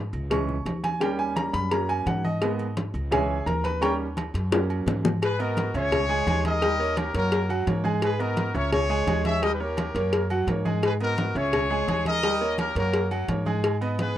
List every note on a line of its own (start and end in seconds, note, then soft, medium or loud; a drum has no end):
0.13 0.62 C#2 loud
0.13 high conga soft
0.13 low agogo medium
0.30 0.54 E3 medium
0.30 0.54 G#3 medium
0.30 0.55 C#4 medium
0.30 0.80 C#6 medium
0.30 cowbell loud
0.30 high conga soft
0.30 low conga medium
0.30 low agogo loud
0.49 high conga soft
0.49 low conga medium
0.66 1.48 D#2 medium
0.66 cowbell medium
0.66 high conga medium
0.66 low timbale medium
0.66 low agogo medium
0.84 1.01 G#5 loud
0.84 cowbell medium
0.84 high conga medium
0.84 low agogo medium
1.00 1.67 G3 medium
1.00 1.68 A#3 medium
1.00 1.68 C#4 medium
1.00 1.18 G5 medium
1.00 cowbell loud
1.00 low agogo loud
1.19 1.36 G#5 loud
1.19 high conga soft
1.36 1.53 A#5 medium
1.36 cowbell medium
1.36 high conga loud
1.36 low timbale medium
1.36 low agogo loud
1.53 2.03 F#2 loud
1.53 1.71 B5 loud
1.53 cowbell medium
1.53 high conga soft
1.71 2.21 F#3 medium
1.71 2.21 A#3 medium
1.71 2.22 C#4 medium
1.71 1.88 A#5 medium
1.71 cowbell loud
1.71 high conga soft
1.71 low agogo loud
1.89 2.06 G#5 loud
1.89 high conga soft
1.89 low agogo loud
2.06 2.88 G#2 medium
2.06 2.24 F#5 medium
2.06 cowbell medium
2.06 high conga medium
2.06 low timbale medium
2.06 low agogo medium
2.24 2.73 D#5 medium
2.24 high conga medium
2.24 low agogo medium
2.41 2.65 G#3 medium
2.41 2.65 A#3 medium
2.41 2.65 B3 medium
2.41 cowbell loud
2.41 low agogo loud
2.59 high conga soft
2.59 low agogo medium
2.77 cowbell medium
2.77 high conga loud
2.77 low timbale medium
2.94 3.43 C#2 loud
2.94 high conga soft
2.94 low agogo medium
3.11 3.35 E3 medium
3.11 3.35 G#3 medium
3.11 3.35 C#4 medium
3.11 3.44 G#4 medium
3.11 3.44 C#5 medium
3.11 3.44 E5 medium
3.11 3.44 G#5 medium
3.11 cowbell loud
3.11 high conga soft
3.11 low conga medium
3.11 low agogo loud
3.30 high conga soft
3.46 4.28 D#2 loud
3.46 3.64 A#4 medium
3.46 3.64 A#5 medium
3.46 cowbell medium
3.46 high conga medium
3.46 low timbale medium
3.46 low agogo medium
3.64 3.81 B4 medium
3.64 3.81 B5 loud
3.64 cowbell medium
3.64 high conga medium
3.64 low agogo medium
3.81 4.05 G3 medium
3.81 4.05 A#3 medium
3.81 4.05 C#4 medium
3.81 3.92 C#5 medium
3.81 3.93 G5 medium
3.81 3.92 A#5 medium
3.81 3.92 C#6 loud
3.81 cowbell loud
3.81 high conga soft
3.81 low agogo loud
4.00 high conga soft
4.17 cowbell medium
4.17 high conga loud
4.17 low timbale medium
4.17 low agogo loud
4.34 4.83 F#2 loud
4.34 cowbell medium
4.34 high conga soft
4.51 5.02 F#3 medium
4.51 5.02 A#3 medium
4.51 5.02 C#4 medium
4.51 cowbell loud
4.51 high bongo loud
4.51 low agogo medium
4.70 high conga soft
4.70 low agogo loud
4.86 5.69 G#2 loud
4.86 cowbell medium
4.86 low bongo medium
4.86 high conga medium
4.86 low timbale medium
4.86 low agogo medium
5.05 low bongo medium
5.05 high conga medium
5.05 low agogo medium
5.22 5.39 G#4 medium
5.22 5.39 B4 medium
5.22 cowbell loud
5.22 low agogo loud
5.39 5.68 B3 medium
5.39 5.75 F#4 medium
5.39 5.68 A#4 medium
5.39 5.75 A#4 medium
5.39 5.68 D#5 medium
5.39 high conga soft
5.39 low agogo medium
5.57 cowbell medium
5.57 high conga loud
5.57 low timbale medium
5.74 6.23 C#2 loud
5.74 6.03 C#4 medium
5.74 6.41 G#4 medium
5.74 6.03 C#5 medium
5.74 6.41 C#5 loud
5.74 6.04 E5 medium
5.74 high conga soft
5.74 low agogo medium
5.92 cowbell loud
5.92 high conga soft
5.92 low conga medium
5.92 low agogo loud
6.09 6.24 G#3 medium
6.09 6.24 G#4 loud
6.09 6.24 G#5 loud
6.09 high conga soft
6.27 7.09 D#2 loud
6.27 6.56 G#3 medium
6.27 6.56 G#4 medium
6.27 6.56 G#5 medium
6.27 cowbell medium
6.27 high conga medium
6.27 low timbale medium
6.27 low agogo medium
6.45 6.97 A#4 medium
6.45 6.98 D#5 loud
6.45 cowbell medium
6.45 high conga medium
6.45 low agogo medium
6.62 6.76 G3 medium
6.62 6.76 G4 medium
6.62 6.77 G5 medium
6.62 cowbell loud
6.62 high conga soft
6.62 low agogo loud
6.79 7.08 A#3 medium
6.79 7.08 A#4 medium
6.79 7.09 C#5 medium
6.79 high conga soft
6.97 7.15 G4 medium
6.97 7.14 A#4 medium
6.97 cowbell medium
6.97 high conga loud
6.97 low timbale medium
6.97 low agogo loud
7.14 7.63 F#2 loud
7.14 7.43 A#3 medium
7.14 7.48 F#4 medium
7.14 7.43 A#4 medium
7.14 7.48 A#4 medium
7.14 7.44 C#5 medium
7.14 cowbell medium
7.14 high conga soft
7.32 cowbell loud
7.32 high conga soft
7.32 low agogo medium
7.49 7.64 F#3 loud
7.49 7.64 F#4 medium
7.49 7.64 F#5 loud
7.49 high conga soft
7.49 low agogo loud
7.67 8.49 G#2 medium
7.67 7.81 A#3 medium
7.67 7.81 A#4 medium
7.67 7.82 C#5 medium
7.67 cowbell medium
7.67 high conga medium
7.67 low timbale medium
7.67 low agogo medium
7.84 8.13 G#3 loud
7.84 8.13 G#4 medium
7.84 8.13 G#5 medium
7.84 high conga medium
7.84 low agogo medium
8.02 8.20 G#4 medium
8.02 8.19 B4 medium
8.02 cowbell loud
8.02 high conga soft
8.02 low agogo loud
8.19 8.48 B3 medium
8.19 8.56 F#4 medium
8.19 8.49 A#4 medium
8.19 8.54 A#4 medium
8.19 8.49 D#5 medium
8.19 high conga soft
8.19 low agogo medium
8.37 cowbell medium
8.37 high conga loud
8.37 low timbale medium
8.54 9.04 C#2 loud
8.54 8.83 C#4 medium
8.54 8.73 A#4 medium
8.54 8.83 C#5 medium
8.54 8.72 C#5 loud
8.54 8.84 E5 medium
8.54 high conga soft
8.54 low agogo medium
8.72 9.22 G#4 medium
8.72 9.22 C#5 loud
8.72 cowbell loud
8.72 high conga soft
8.72 low conga medium
8.72 low agogo loud
8.90 9.04 G#3 loud
8.90 9.04 G#4 loud
8.90 9.04 G#5 loud
8.90 high conga soft
9.07 9.89 D#2 loud
9.07 9.36 G#3 medium
9.07 9.36 G#4 medium
9.07 9.36 G#5 medium
9.07 cowbell medium
9.07 high conga medium
9.07 low timbale medium
9.07 low agogo medium
9.25 9.42 C#5 medium
9.25 9.41 E5 loud
9.25 cowbell medium
9.25 high conga medium
9.25 low agogo medium
9.42 9.57 G3 medium
9.42 9.57 G4 medium
9.42 9.54 A#4 medium
9.42 9.53 D#5 loud
9.42 9.57 G5 medium
9.42 cowbell loud
9.42 low agogo loud
9.53 9.60 B4 medium
9.60 9.89 A#3 medium
9.60 10.13 G4 medium
9.60 10.30 A#4 medium
9.60 9.89 A#4 medium
9.60 9.89 C#5 medium
9.60 high conga soft
9.77 cowbell medium
9.77 high conga loud
9.77 low timbale medium
9.77 low agogo loud
9.95 10.44 F#2 loud
9.95 10.24 A#3 medium
9.95 10.24 A#4 medium
9.95 10.24 C#5 medium
9.95 cowbell medium
9.95 high conga soft
10.13 cowbell loud
10.13 high conga soft
10.13 low agogo loud
10.30 10.45 F#3 medium
10.30 10.45 F#4 medium
10.30 10.45 F#5 loud
10.30 high conga soft
10.30 low agogo loud
10.47 11.29 G#2 loud
10.47 10.62 A#3 medium
10.47 10.63 A#4 medium
10.47 10.63 C#5 medium
10.47 cowbell medium
10.47 high conga loud
10.47 low timbale medium
10.47 low agogo medium
10.65 10.94 G#3 medium
10.65 10.94 G#4 loud
10.65 10.94 G#5 medium
10.65 high conga medium
10.65 low agogo medium
10.83 10.92 G#4 medium
10.83 10.92 B4 medium
10.83 cowbell loud
10.83 low agogo loud
11.00 11.29 B3 medium
11.00 11.34 F#4 medium
11.00 11.30 A#4 medium
11.00 11.34 A#4 medium
11.00 11.30 D#5 medium
11.00 low agogo medium
11.18 cowbell medium
11.18 high conga loud
11.18 low timbale medium
11.35 11.84 C#2 loud
11.35 11.64 C#4 medium
11.35 12.06 G#4 medium
11.35 11.64 C#5 medium
11.35 12.06 C#5 loud
11.35 11.65 E5 medium
11.35 high conga soft
11.35 low agogo medium
11.53 cowbell loud
11.53 high conga soft
11.53 low conga medium
11.53 low agogo loud
11.70 11.85 G#3 medium
11.70 11.85 G#4 loud
11.70 11.85 G#5 medium
11.70 high conga soft
11.88 12.70 D#2 loud
11.88 12.17 G#3 medium
11.88 12.17 G#4 medium
11.88 12.17 G#5 medium
11.88 cowbell medium
11.88 high conga medium
11.88 low timbale medium
11.88 low agogo medium
12.06 12.55 A#4 medium
12.06 12.55 D#5 loud
12.06 cowbell medium
12.06 high conga medium
12.06 low agogo medium
12.23 12.38 G3 medium
12.23 12.38 G4 medium
12.23 12.38 G5 medium
12.23 cowbell loud
12.23 low agogo loud
12.41 12.70 A#3 medium
12.41 12.70 A#4 medium
12.41 12.70 C#5 medium
12.41 high conga soft
12.58 12.76 G4 medium
12.58 12.75 A#4 loud
12.58 cowbell medium
12.58 high conga loud
12.58 low timbale medium
12.58 low agogo loud
12.75 13.25 F#2 loud
12.75 13.05 A#3 medium
12.75 13.09 F#4 medium
12.75 13.05 A#4 medium
12.75 13.09 A#4 medium
12.75 13.05 C#5 medium
12.75 cowbell medium
12.75 high conga soft
12.93 cowbell loud
12.93 high conga soft
12.93 low agogo medium
13.11 13.25 F#3 loud
13.11 13.25 F#4 loud
13.11 13.26 F#5 loud
13.11 high conga soft
13.11 low agogo loud
13.28 14.10 G#2 loud
13.28 13.43 A#3 medium
13.28 13.43 A#4 medium
13.28 13.43 C#5 medium
13.28 cowbell medium
13.28 high conga loud
13.28 low timbale medium
13.28 low agogo medium
13.46 13.75 G#3 medium
13.46 13.75 G#4 loud
13.46 13.75 G#5 medium
13.46 high conga medium
13.46 low agogo medium
13.64 cowbell loud
13.64 high conga soft
13.64 low agogo loud
13.81 14.10 B3 medium
13.81 14.10 B4 medium
13.81 14.10 D#5 medium
13.81 high conga soft
13.81 low agogo medium
13.99 14.18 G#4 medium
13.99 14.18 B4 medium
13.99 cowbell medium
13.99 high conga loud
13.99 low timbale medium